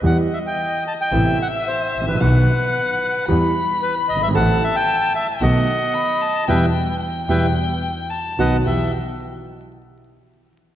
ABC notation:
X:1
M:4/4
L:1/16
Q:1/4=112
K:Em
V:1 name="Violin"
^d8 e8 | f8 b8 | a8 f4 b2 a2 | g4 g8 a4 |
g2 z12 z2 |]
V:2 name="Bandoneon"
f2 e g3 a g3 f e c3 B | B8 z4 B2 ^d e | f2 e g3 e2 ^d8 | [Beg]2 z4 [Beg]2 z6 [B^df]2 |
e2 z12 z2 |]
V:3 name="Grand piano" clef=bass
[E,,E,G,B,G]2 z6 [A,,,A,,C,A,B,E]2 z4 z/2 ^G,,,/2 A,,,/2 ^A,,,/2 | [B,,,B,,^D,F,B,F]2 z6 [E,,E,G,B,G]2 z4 z/2 F,,,/2 G,,,/2 ^G,,,/2 | [A,,,A,,E,A,CA]2 z6 [B,,,B,,^D,A,B,F]2 z6 | [B,,E,G,]2 z4 [B,,E,G,]2 z6 [B,,^D,F,]2 |
[E,,B,EG]2 z12 z2 |]
V:4 name="Double bass" clef=bass
E,,2 z6 A,,,2 z4 A,,,2 | B,,,2 z6 E,,2 z4 G,,,2 | A,,,2 z6 B,,,2 z6 | E,,2 z4 E,,2 z6 B,,,2 |
E,,2 z12 z2 |]